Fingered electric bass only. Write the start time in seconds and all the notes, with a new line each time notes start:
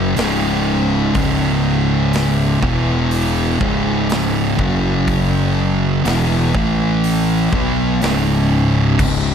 Already playing: F#1
0.18 C#1
1.16 C#1
2.62 E1
3.61 C#1
4.59 F#1
6.06 E1
6.55 A1
7.52 B1
8.02 C#1
8.99 C#1